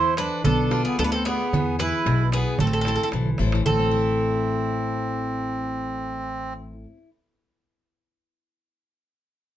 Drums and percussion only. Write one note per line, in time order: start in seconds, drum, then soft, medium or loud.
0.04 darbuka tek soft
0.17 darbuka tek medium
0.44 darbuka dum medium
0.58 darbuka tek soft
0.71 darbuka tek medium
0.85 darbuka tek soft
0.99 darbuka tek medium
1.26 darbuka tek medium
1.53 darbuka dum medium
1.67 darbuka tek soft
1.79 darbuka tek medium
1.93 darbuka tek soft
2.06 darbuka tek medium
2.19 darbuka tek soft
2.32 darbuka tek medium
2.59 darbuka dum medium
2.85 darbuka tek medium
2.98 darbuka tek soft
3.12 darbuka tek medium
3.25 darbuka dum medium
3.38 darbuka tek medium
3.52 darbuka tek medium
3.66 darbuka dum medium